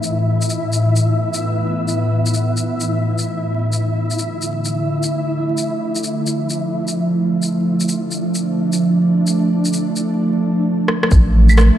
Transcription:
0.00 3.73 A2 medium
0.00 3.73 E3 medium
0.00 0.70 C4 medium
0.00 10.19 E4 medium
0.00 10.19 E5 medium
0.00 shaker soft
0.42 shaker medium
0.50 shaker medium
0.57 4.49 B3 medium
0.73 shaker medium
0.96 shaker medium
1.34 shaker medium
1.88 shaker soft
2.26 shaker soft
2.34 shaker soft
2.57 shaker soft
2.80 shaker soft
3.18 shaker soft
3.73 11.11 D3 medium
3.73 shaker soft
3.87 11.78 A3 medium
4.11 shaker soft
4.17 7.40 E4 medium
4.17 shaker soft
4.42 shaker soft
4.65 shaker soft
5.03 shaker soft
5.13 11.11 F3 medium
5.57 shaker soft
5.95 shaker soft
6.04 shaker soft
6.27 shaker soft
6.50 shaker soft
6.88 shaker soft
7.27 11.78 D4 medium
7.42 shaker soft
7.80 shaker soft
7.88 shaker soft
8.11 shaker soft
8.35 shaker soft
8.73 shaker soft
9.27 shaker soft
9.65 shaker soft
9.73 shaker medium
9.96 shaker medium
10.88 cross-stick medium
11.03 cross-stick medium
11.11 11.71 A1 loud
11.11 kick loud
11.11 shaker medium
11.22 11.78 E4 medium
11.49 claves medium
11.49 shaker medium
11.58 cross-stick loud
11.58 shaker medium

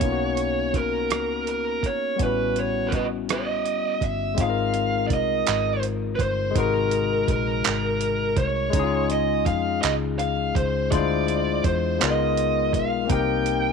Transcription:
0.00 1.12 B1 loud
0.00 2.13 A#3 medium
0.00 2.14 B3 soft
0.00 2.15 C#4 medium
0.00 2.17 D#4 medium
0.00 0.79 C#5 medium
0.00 kick medium
0.00 closed hi-hat medium
0.06 0.10 F4 medium
0.12 2.21 F#4 medium
0.37 closed hi-hat soft
0.74 1.48 A#4 medium
0.74 kick medium
0.74 closed hi-hat soft
1.10 1.84 C#2 medium
1.10 cross-stick medium
1.10 closed hi-hat medium
1.47 1.85 A#4 medium
1.47 closed hi-hat soft
1.83 2.16 G#1 medium
1.83 2.18 C#5 medium
1.83 kick medium
1.83 closed hi-hat soft
2.16 4.32 G3 medium
2.16 4.33 B3 medium
2.16 kick medium
2.16 closed hi-hat medium
2.20 3.67 A1 medium
2.20 4.34 C#4 medium
2.20 4.35 E4 soft
2.20 2.58 B4 medium
2.26 4.37 F#4 medium
2.56 2.92 C#5 medium
2.56 closed hi-hat soft
2.88 2.93 A#4 medium
2.92 3.04 B4 medium
2.92 3.04 D#5 medium
2.92 kick medium
2.92 closed hi-hat soft
3.29 4.04 D#5 medium
3.29 4.03 E5 medium
3.29 cross-stick loud
3.29 closed hi-hat medium
3.66 3.99 G1 medium
3.66 closed hi-hat soft
4.01 4.34 G1 medium
4.01 4.40 E5 medium
4.01 kick medium
4.01 closed hi-hat soft
4.34 6.50 G#3 medium
4.34 6.51 C4 medium
4.34 kick loud
4.34 closed hi-hat medium
4.39 5.11 G#1 loud
4.39 6.52 D#4 medium
4.39 6.53 F4 medium
4.39 5.07 F5 loud
4.43 4.47 G#4 medium
4.49 6.58 A#4 medium
4.74 closed hi-hat soft
5.08 5.43 C2 medium
5.08 5.12 D5 medium
5.08 kick medium
5.08 closed hi-hat soft
5.14 5.81 D#5 medium
5.47 6.16 G#1 medium
5.47 clap loud
5.47 closed hi-hat medium
5.83 closed hi-hat soft
6.16 6.21 B4 medium
6.16 kick medium
6.20 6.52 G1 medium
6.20 6.57 C5 medium
6.20 closed hi-hat soft
6.51 8.69 C3 medium
6.51 8.67 G#3 medium
6.55 7.25 G#1 loud
6.55 8.70 D#4 medium
6.55 8.71 F#4 medium
6.55 7.29 A#4 medium
6.55 kick loud
6.55 closed hi-hat medium
6.60 8.72 A#4 medium
6.91 closed hi-hat soft
7.28 7.61 A#1 medium
7.28 8.37 A#4 medium
7.28 kick medium
7.28 closed hi-hat soft
7.64 8.34 G#1 medium
7.64 clap loud
7.64 closed hi-hat medium
8.01 closed hi-hat medium
8.37 8.70 C2 loud
8.37 9.06 C#5 medium
8.37 kick medium
8.37 closed hi-hat soft
8.70 10.86 G#3 medium
8.70 10.87 C#4 medium
8.70 kick loud
8.70 closed hi-hat medium
8.74 9.47 C#2 loud
8.74 10.88 D#4 medium
8.74 8.82 E4 soft
8.79 10.93 F4 medium
8.79 10.91 G#4 medium
9.10 9.45 D#5 medium
9.10 closed hi-hat soft
9.46 9.80 F2 medium
9.46 9.80 F5 medium
9.46 kick medium
9.46 closed hi-hat soft
9.82 10.52 C#2 medium
9.82 9.92 D#5 medium
9.82 clap loud
9.82 closed hi-hat medium
10.19 10.53 F5 loud
10.19 closed hi-hat medium
10.55 10.89 C#2 loud
10.55 10.89 C5 medium
10.55 kick medium
10.55 closed hi-hat soft
10.91 11.61 D2 loud
10.91 11.97 G#3 medium
10.91 12.01 D4 medium
10.91 12.01 E4 medium
10.91 12.01 F4 medium
10.91 11.65 D5 medium
10.91 kick loud
10.91 closed hi-hat medium
10.95 12.03 C5 medium
11.28 closed hi-hat soft
11.64 11.98 E2 medium
11.64 12.02 C5 medium
11.64 kick medium
11.64 closed hi-hat soft
11.99 12.74 C#2 loud
11.99 13.09 G#3 medium
11.99 13.10 B3 medium
11.99 13.08 D#4 medium
11.99 13.11 F4 medium
11.99 12.71 D#5 medium
11.99 clap loud
11.99 closed hi-hat medium
12.03 13.11 A#4 medium
12.37 closed hi-hat soft
12.73 13.07 B1 medium
12.73 13.11 F5 loud
12.73 kick medium
12.73 closed hi-hat soft
13.05 13.72 A#3 medium
13.05 13.72 C4 medium
13.09 13.72 C2 loud
13.09 13.72 D#4 medium
13.09 13.72 G4 medium
13.09 13.72 G5 loud
13.09 kick loud
13.09 closed hi-hat medium
13.14 13.72 A#4 medium
13.46 closed hi-hat soft

